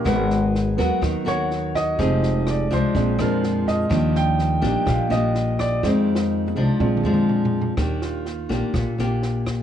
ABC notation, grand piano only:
X:1
M:4/4
L:1/8
Q:1/4=124
K:Eb
V:1 name="Grand piano"
_c2 z3 _d2 e- | e2 d c2 B z e- | e g3 f e2 d | z8 |
z F6- F |]
V:2 name="Grand piano"
z3 [_G,_C]4- [G,C] | [A,EG]3 z [A,CD]4 | [F,G,D] z6 z | [A,E]4 [A,CD]3 z |
z8 |]